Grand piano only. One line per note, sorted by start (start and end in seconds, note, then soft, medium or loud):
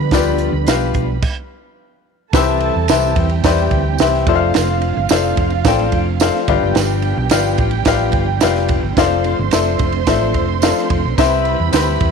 0.13 0.91 D3 medium
0.13 0.50 F4 loud
0.13 0.50 G4 loud
0.13 0.50 B4 medium
0.13 0.50 D5 loud
0.67 1.05 F4 medium
0.67 1.05 G4 medium
0.67 1.05 B4 medium
0.67 1.05 F5 medium
2.34 3.13 C3 medium
2.34 2.71 E4 loud
2.34 2.71 G4 loud
2.34 2.71 B4 medium
2.34 2.71 C5 medium
2.34 2.72 E5 loud
2.90 3.26 E4 medium
2.90 3.27 G4 medium
2.90 3.27 B4 medium
2.90 3.27 C5 medium
2.90 3.27 E5 loud
3.44 3.81 E4 medium
3.44 3.82 G4 medium
3.44 3.82 B4 medium
3.44 3.82 C5 medium
3.44 3.82 D5 loud
4.00 4.27 E4 medium
4.00 4.27 G4 medium
4.00 4.27 B4 medium
4.00 4.27 C5 medium
4.00 4.28 E5 loud
4.28 4.94 F4 loud
4.28 4.94 A4 medium
4.28 4.94 C5 medium
4.28 4.94 D5 medium
4.28 4.34 E5 medium
4.35 4.98 F5 loud
5.10 5.48 F4 medium
5.10 5.48 A4 medium
5.10 5.48 C5 medium
5.10 5.48 D5 medium
5.10 5.48 F5 medium
5.66 6.03 F4 medium
5.66 6.03 A4 medium
5.66 6.03 C5 medium
5.66 6.03 D5 medium
5.66 6.04 G5 medium
6.21 6.47 F4 medium
6.21 6.49 A4 medium
6.21 6.49 C5 medium
6.21 6.48 D5 medium
6.21 6.48 F5 loud
6.49 7.28 G2 medium
6.49 7.15 F4 medium
6.49 7.15 G4 medium
6.49 7.15 B4 medium
6.49 7.15 D5 medium
6.49 7.15 F5 loud
7.31 7.69 F4 medium
7.31 7.69 G4 medium
7.31 7.69 B4 medium
7.31 7.69 D5 medium
7.31 7.69 F5 loud
7.86 8.24 F4 medium
7.86 8.24 G4 medium
7.86 8.24 B4 medium
7.86 8.24 D5 medium
7.86 8.24 F5 loud
8.42 8.79 F4 medium
8.42 8.79 G4 medium
8.42 8.79 B4 medium
8.42 8.80 D5 medium
8.42 8.80 F5 loud
8.97 9.35 F4 loud
8.97 9.35 A4 loud
8.97 9.35 C5 loud
8.97 9.35 D5 loud
8.97 9.35 F5 loud
9.52 9.90 F4 medium
9.52 9.90 A4 medium
9.52 9.90 C5 medium
9.52 9.90 D5 medium
9.52 9.90 E5 medium
10.08 10.45 F4 medium
10.08 10.45 A4 medium
10.08 10.45 C5 medium
10.08 10.45 D5 medium
10.08 10.45 E5 loud
10.62 11.00 F4 medium
10.62 11.00 A4 medium
10.62 11.00 C5 medium
10.62 11.00 D5 medium
10.62 11.00 F5 loud
11.18 11.97 C3 medium
11.18 11.55 E4 loud
11.18 11.55 G4 loud
11.18 11.55 B4 loud
11.18 11.56 C5 loud
11.18 11.56 E5 loud
11.72 12.10 E4 medium
11.72 12.10 G4 medium
11.72 12.10 B4 medium
11.72 12.10 C5 medium
11.72 12.10 E5 medium